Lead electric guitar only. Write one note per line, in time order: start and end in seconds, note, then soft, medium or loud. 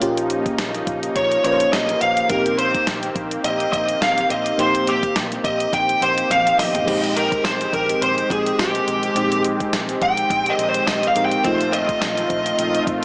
1.16 1.44 C#5 medium
1.45 1.73 C#5 medium
1.73 2.00 D#5 medium
2.02 2.28 F5 medium
2.30 2.56 A#4 medium
2.59 2.85 C5 medium
3.45 3.71 D#5 loud
3.72 3.99 D#5 loud
4.02 4.30 F5 loud
4.31 4.60 D#5 medium
4.60 4.89 C5 medium
4.89 5.14 G4 medium
5.45 5.74 D#5 loud
5.74 6.00 G5 loud
6.03 6.31 C5 medium
6.31 6.57 F5 loud
6.59 7.18 D#5 medium
7.16 7.45 A#4 medium
7.45 7.74 C5 medium
7.74 8.02 A#4 medium
8.03 8.31 C5 medium
8.32 8.60 G#4 medium
8.60 9.41 G4 medium
10.03 10.51 G5 loud
10.50 10.69 D#5 medium
10.69 10.87 C5 medium
10.88 11.07 D#5 medium
11.07 11.25 F5 medium
11.25 11.45 G5 medium
11.44 11.73 C5 medium
11.73 12.00 D#5 medium
12.02 12.83 D#5 medium